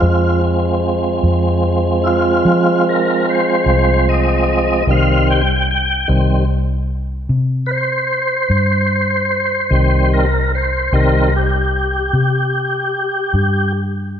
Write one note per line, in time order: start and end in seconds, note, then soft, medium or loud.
0.00 1.20 F2 medium
0.00 4.82 F3 medium
0.00 4.83 G#3 soft
0.00 4.83 C4 medium
0.00 0.41 F4 medium
1.23 2.41 F2 medium
2.04 2.08 E4 medium
2.04 2.84 F4 medium
2.45 3.62 F3 medium
2.89 3.27 A#4 medium
3.29 4.06 C5 medium
3.66 4.83 C2 medium
4.09 4.86 D#5 medium
4.87 6.05 C2 medium
4.87 5.41 D#3 medium
4.87 5.42 G3 soft
4.87 5.42 C4 medium
4.87 5.28 F5 medium
5.30 5.68 G5 medium
5.71 6.09 G5 loud
6.08 7.26 C2 medium
6.08 6.45 D#3 medium
6.08 6.45 G3 soft
6.08 6.45 C4 medium
7.29 8.47 C3 medium
7.66 7.71 B4 medium
7.71 10.09 C5 medium
8.50 9.67 G2 medium
9.70 10.88 C2 loud
9.70 10.25 D#3 medium
9.70 10.26 G3 soft
9.70 10.26 C4 medium
10.13 10.52 A#4 medium
10.55 10.93 C5 medium
10.92 12.10 C2 medium
10.92 11.30 D#3 soft
10.92 11.30 G3 soft
10.92 11.30 C4 medium
10.92 11.33 A#4 medium
11.36 13.72 G4 medium
12.13 13.31 C3 medium
13.34 14.20 G2 loud